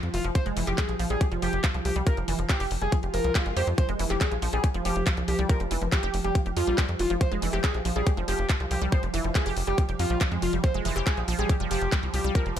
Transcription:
Already playing: F3
0.03 F2 F3, closed hi-hat
0.14 F1 E3 F4, open hi-hat
0.24 F1 F3, closed hi-hat
0.35 F3 C5, kick, closed hi-hat
0.46 F1 G#3, closed hi-hat
0.57 F1 E3, open hi-hat
0.67 F1 G4, clap, closed hi-hat
0.78 G3 G#4, kick, clap, closed hi-hat
0.89 A#1 F3, closed hi-hat
0.99 A#1 F3, open hi-hat
1.10 A#1 G3 G#4, closed hi-hat
1.21 G4, kick, closed hi-hat
1.32 F1 F3, closed hi-hat
1.42 F1 F3 G4, open hi-hat
1.53 F1, closed hi-hat
1.64 F3, kick, clap, closed hi-hat
1.74 C2 F3, closed hi-hat
1.85 C2 F3 G4, open hi-hat
1.96 C2 G3, closed hi-hat
2.07 F4 A#4, kick, closed hi-hat
2.17 F1 F3, closed hi-hat
2.28 F1 E3, open hi-hat
2.39 F1 F3, closed hi-hat
2.49 F3 G4, kick, clap, closed hi-hat
2.60 F1 G4, open hi-hat
2.71 F1, open hi-hat
2.82 F1 G3 G#4, closed hi-hat
2.92 F3, kick, closed hi-hat, swell
3.03 F1 G4, closed hi-hat
3.14 F1 F3 A#4, open hi-hat
3.24 C2 F3, closed hi-hat
3.35 G#3, kick, clap, closed hi-hat
3.46 G1 G#3, closed hi-hat
3.57 F2 G4 C5, open hi-hat
3.67 F2 F3, closed hi-hat
3.78 F3 C5, kick, closed hi-hat
3.89 F1 G#3, closed hi-hat
3.99 F1 E3, open hi-hat
4.10 F1 G4, clap, closed hi-hat
4.21 G3 G#4, kick, clap, closed hi-hat
4.32 A#1 F3, closed hi-hat
4.42 A#1 F3, open hi-hat
4.53 A#1 G3 G#4, closed hi-hat
4.64 G4, kick, closed hi-hat
4.74 F1 F3, closed hi-hat
4.85 F1 F3 G4, open hi-hat
4.96 F1, closed hi-hat
5.07 F3, kick, clap, closed hi-hat
5.17 C2 F3, closed hi-hat
5.28 C2 F3 G4, open hi-hat
5.39 C2 G3, closed hi-hat
5.49 F3 A#4, kick, closed hi-hat
5.60 F1 F3, closed hi-hat
5.71 F1 E3, open hi-hat
5.82 F1 F3, closed hi-hat
5.92 F3 G4, kick, clap, closed hi-hat
6.03 F1 G4, closed hi-hat
6.14 F1, open hi-hat
6.24 F1 G3 G4, closed hi-hat
6.35 F3, kick, closed hi-hat
6.46 F1 G4, closed hi-hat
6.57 F2 F3 F4, open hi-hat
6.67 A#1 G3, closed hi-hat
6.78 F3, kick, clap, closed hi-hat
6.89 F2 F3, closed hi-hat
6.99 F1 E3 F4, open hi-hat
7.10 F1 F3, closed hi-hat
7.21 F3 C5, kick, closed hi-hat
7.32 F1 G#3, closed hi-hat
7.42 F1 E3, open hi-hat
7.53 F1 G4, clap, closed hi-hat
7.64 G3 G#4, kick, clap, closed hi-hat
7.74 A#1 F3, closed hi-hat
7.85 A#1 F3, open hi-hat
7.96 A#1 G3 G#4, closed hi-hat
8.07 G4, kick, closed hi-hat
8.17 F1 F3, closed hi-hat
8.28 F1 F3 G4, open hi-hat
8.39 F1, closed hi-hat
8.49 F3, kick, clap, closed hi-hat
8.60 C2 F3, closed hi-hat
8.71 C2 F3 G4, open hi-hat
8.82 C2 G3, closed hi-hat
8.92 F3 C5, kick, closed hi-hat
9.03 F1 F3, closed hi-hat
9.14 F1 E3, open hi-hat
9.24 F1 F3, closed hi-hat
9.35 F3 G#4, kick, clap, closed hi-hat
9.46 F1 G4, open hi-hat
9.57 F1, open hi-hat
9.67 F1 G3 G4, closed hi-hat
9.78 F3, kick, closed hi-hat
9.89 F1 G4, closed hi-hat
9.99 F2 F3 F4, open hi-hat
10.10 A#1 G3, closed hi-hat
10.21 F3, kick, clap, closed hi-hat
10.32 F2 G#3, closed hi-hat
10.42 F1 F4, open hi-hat
10.53 F1 G3, closed hi-hat
10.64 F3 C5, kick, closed hi-hat
10.74 F1 G#3, closed hi-hat
10.85 F1 E3, open hi-hat
10.96 F1 G4, clap, closed hi-hat
11.07 G3 G#4, kick, clap, closed hi-hat
11.17 A#1 F3, closed hi-hat
11.28 A#1 F3, open hi-hat
11.39 A#1 G3 G#4, closed hi-hat
11.49 G4, kick, closed hi-hat
11.60 F1 F3, closed hi-hat
11.71 F1 F3 G4, open hi-hat
11.82 F1, closed hi-hat
11.92 G3, kick, clap, closed hi-hat
12.03 C2 F3, closed hi-hat
12.14 C2 F3 G4, open hi-hat
12.24 C2 G3, closed hi-hat
12.35 F3 A#4, kick, closed hi-hat
12.46 F1 F3, closed hi-hat

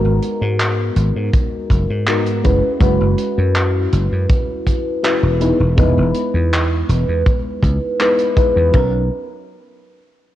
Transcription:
Already playing: G#3 B3 D#4 F#4 A#4
0.05 G#1
0.23 closed hi-hat
0.41 G#2
0.60 clap, closed hi-hat
0.96 G#1, closed hi-hat
1.16 G#2
1.34 kick, closed hi-hat
1.70 F#1, kick, closed hi-hat
1.90 G#2
2.07 G#3 B3 D#4 F#4 A#4, clap, closed hi-hat
2.26 closed hi-hat
2.43 F#1 G#3 C#4 E4 F#4 B4, kick, closed hi-hat
2.80 F#1 G#3 C#4 E4 F#4 B4, kick, closed hi-hat
3.01 F#1
3.18 closed hi-hat
3.38 F#2
3.55 clap, closed hi-hat
3.93 F#1, closed hi-hat
4.12 F#2
4.30 kick, closed hi-hat
4.67 kick, closed hi-hat
5.03 G#3 C#4 E4 F#4 B4, clap, closed hi-hat
5.23 E1
5.40 G#3 B3 D#4 E4 B4, closed hi-hat
5.60 E1
5.76 E1 G#3 B3 D#4 E4 B4, kick, closed hi-hat
5.97 E1
6.14 closed hi-hat
6.34 E2
6.53 clap, closed hi-hat
6.89 E1, closed hi-hat
7.08 E2
7.26 kick, closed hi-hat
7.63 C#2, kick, closed hi-hat
7.99 G#3 B3 D#4 E4 B4, clap, closed hi-hat
8.19 closed hi-hat
8.36 G#3 B3 D#4 E4 B4, kick, closed hi-hat
8.56 E2
8.71 B1 F#3 B3 C#4 D#4, kick, ride bell
8.76 A#4

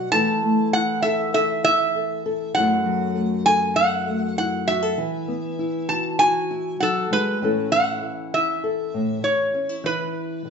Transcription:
Already playing: B2 B3 F#4 F#5
0.12 E3 A3 E4 A4 A5
0.43 A3
0.73 E4 F#5
1.02 A4 E5
1.34 A4 E5
1.64 E4 E5
1.96 A4
2.26 A4
2.55 F#2 F#3 A3 E4 F#5
2.59 A4
2.86 F#3
3.15 A3
3.46 A4 G#5
3.76 E4 F#5
4.08 A3
4.38 E4 F#5
4.68 F#4 E5
4.82 A4
4.98 E3
5.28 B3
5.59 E4
5.89 F#4 A5
6.19 F#4 G#5
6.51 E4
6.80 F#3 A4 F#5
7.11 G#3 B4
7.41 A2 E3 C#4 E4 A4
7.72 F#5
8.03 muted nylon-string guitar stroke
8.34 E4 E5
8.64 A4
8.94 A2
9.23 C#5, muted nylon-string guitar stroke
9.54 C#4
9.69 E4
9.84 E3 E4 B4
10.45 muted nylon-string guitar stroke

